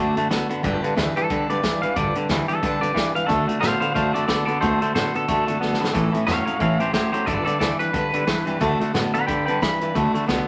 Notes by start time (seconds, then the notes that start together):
Already playing: D3 A3 D4 F#4 A4
0.15 F#2 D3 A3 D4 F#4 A4, closed hi-hat
0.29 C2 D3 A3 B3 D4 F#4 A4, snare, closed hi-hat
0.49 F#1 D3 B3 D4 F#4 A4, closed hi-hat
0.63 G1 G2 D3 G3 D4 G4 B4, kick, closed hi-hat
0.82 G2 D3 D4 G4 B4, muted upright bass stroke, closed hi-hat
0.96 D2 G2 E3 G3 D4 G4 B4, snare, closed hi-hat
1.15 G2 E3 D4 G4 A4 B4, muted upright bass stroke, closed hi-hat
1.30 B1 G2 D3 G3 D4 G4 B4, kick, closed hi-hat
1.50 B1 G2 D3 D4 G4 B4 D5, closed hi-hat
1.63 E1 G2 E3 G3 D4 G4 B4, kick, snare, closed hi-hat
1.82 B1 G2 E3 D4 G4 B4 F5, closed hi-hat
1.96 G1 G2 D3 G3 D4 G4 B4 D5, kick, closed hi-hat
2.15 G2 D3 D4 G4 B4, muted upright bass stroke, closed hi-hat
2.28 D2 G2 E3 G3 D4 G4 B4, snare, closed hi-hat
2.48 G2 E3 D4 G4 A4 B4, muted upright bass stroke, closed hi-hat
2.62 B1 G2 D3 G3 D4 G4 B4, kick, closed hi-hat
2.81 B1 G2 D3 D4 G4 B4 D5, closed hi-hat
2.94 G2 E3 G3 D4 G4 B4, kick, snare, closed hi-hat
3.15 B1 G2 E3 D4 G4 B4 F5, closed hi-hat
3.26 D2 D3 A3 D4 F#4 A4, kick, closed hi-hat
3.48 D3 A3 D4 F#4 A4, muted upright bass stroke, closed hi-hat
3.60 A2 D3 A3 B3 D4 F#4 C5 F5, snare, closed hi-hat
3.65 A4
3.80 D3 B3 D4 F#4 A4 C5 F5, muted upright bass stroke, closed hi-hat
3.94 F#2 D3 A3 D4 F#4 A4 C5 F5, kick, closed hi-hat
4.13 F#2 D3 A3 D4 F#4 A4 D5, closed hi-hat
4.26 D3 A3 B3 D4 F#4 A4 D5, kick, snare, closed hi-hat
4.45 F#2 D3 B3 A4 D5, closed hi-hat
4.49 D4 F#4
4.60 D2 D3 A3 D4 F#4 A4 C5, kick, closed hi-hat
4.81 D3 A3 D4 F#4 A4 C5, muted upright bass stroke, closed hi-hat
4.94 A2 D3 A3 B3 D4 F#4 A4 C5, snare, closed hi-hat
5.14 D3 B3 D4 F#4 A4, muted upright bass stroke, closed hi-hat
5.28 D3 A3 D4 F#4 A4, kick, closed hi-hat
5.47 F#2 D3 A3 F#4 A4, closed hi-hat
5.51 D4
5.60 C2 D3 A3 B3 D4 F#4 A4, snare
5.74 snare
5.80 G#1 D3 B3 D4 F#4 A4
5.84 snare
5.93 A1 A2 E3 A3 C#4 E4 A4, kick, closed hi-hat
6.12 A2 E3 A3 C#4 E4 A4, muted upright bass stroke, closed hi-hat
6.26 E2 A2 F#3 A3 C#4 E4 A4 C#5 F5, snare, closed hi-hat
6.46 A2 F#3 A3 C#4 E4 A4 C#5 F5, muted upright bass stroke, closed hi-hat
6.59 A2 E3 A3 C#4 E4 A4 C#5 F5, kick, closed hi-hat
6.79 C#2 A2 E3 A3 C#4 E4 G4 A4 C5, closed hi-hat
6.93 G1 A2 F#3 A3 C#4 E4 G4 A4 C5, kick, snare, closed hi-hat
7.12 C#2 A2 F#3 A3 C#4 E4 G4 A4 C5, closed hi-hat
7.25 G1 G2 D3 G3 D4 G4 A4 B4 D5, kick, closed hi-hat
7.45 G2 D3 G4 A4 B4 D5, muted upright bass stroke, closed hi-hat
7.49 D4
7.59 D2 G2 E3 G3 D4 G4 A4 B4 D5, snare, closed hi-hat
7.79 G2 E3 D4 G4 B4, muted upright bass stroke, closed hi-hat
7.93 G2 D3 G3 D4 G4 B4, kick, closed hi-hat
8.13 B1 G2 D3 D4 G4 B4, closed hi-hat
8.26 E1 G2 E3 G3 D4 G4 B4, kick, snare, closed hi-hat
8.46 B1 G2 E3 D4 G4 B4, closed hi-hat
8.60 D2 D3 A3 D4 F#4 A4, kick, closed hi-hat
8.79 D3 A3 D4 F#4 A4, muted upright bass stroke, closed hi-hat
8.94 A2 D3 A3 B3 D4 F#4 A4, snare, closed hi-hat
9.13 D3 B3 D4 F#4 A4 F#5 B5, muted upright bass stroke, closed hi-hat
9.27 G1 G2 D3 G3 D4 G4 B4 G5 B5, kick, closed hi-hat
9.46 B1 G2 D3 G4 B4 G5 B5, closed hi-hat
9.50 D4
9.61 E1 G2 E3 G3 D4 G4 B4 B5, kick, snare, closed hi-hat
9.80 B1 G2 E3 D4 G4 B4, closed hi-hat
9.95 D2 D3 A3 D4 F#4 A4, kick, closed hi-hat
10.13 D3 A3 D4 F#4 A4, muted upright bass stroke, closed hi-hat
10.26 B1 D3 A3 B3 D4 F#4 A4, snare, closed hi-hat